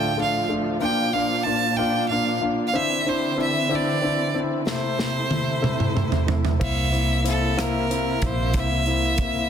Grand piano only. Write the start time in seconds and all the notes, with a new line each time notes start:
Already playing: A3 D4 F4
0.17 A3 D4 F4
0.49 A3 D4 F4
0.80 A#3 D4 F4
1.13 A#3 D4 F4
1.45 A#3 D4 F4
1.78 A#3 D4 F4
2.11 A#3 D4 F4
2.41 A#3 D4 F4
2.74 C4 D4 E4
3.06 C4 D4 E4
3.38 C4 D4 E4
3.69 C4 D4 E4
4.02 C4 D4 E4
4.34 C4 D4 E4
4.67 C3 A3 C4 E4
4.98 C3 A3 C4 E4
5.31 C3 A3 C4 E4
5.62 C3 A3 C4 E4
5.94 C3 A3 C4 E4
6.27 C3 A3 C4 E4
6.59 A#3 C4 E4
6.92 A#3 C4 E4
7.24 A#3 C4 E4
7.57 A#3 C4 E4
7.90 A#3 C4 E4
8.22 A#3 C4 E4
8.54 A#3 C4 E4
8.87 A#3 C4 E4
9.18 A#3 C4 E4